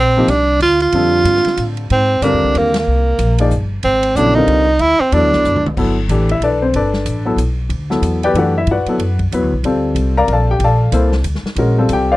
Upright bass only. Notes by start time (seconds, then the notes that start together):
Already playing: A#1
0.28 C2
0.60 D2
0.93 F2
1.25 G2
1.45 muted upright bass stroke
1.57 A2
1.90 G#2
2.21 G2
2.33 D#2
2.44 C2
2.55 D#2
2.87 C2
3.19 A#1
3.51 G1
3.84 G#1
4.16 A#1
4.47 C2
4.80 D2
5.00 muted upright bass stroke
5.12 E2
5.23 D2
5.34 C2
5.45 F#2
5.56 D2
5.66 C2
5.77 G1
6.08 A1
6.40 B1
6.73 G1
7.05 A1
7.36 B1
7.69 D2
8.02 E2
8.34 F#2
8.67 G2
8.86 muted upright bass stroke
8.98 F#2
9.32 E2
9.42 D2
9.53 B1
9.63 D2
9.95 C2
10.28 A#1
10.59 A#1
10.92 C2
11.24 D2
11.43 muted upright bass stroke
11.56 A#1
11.89 C2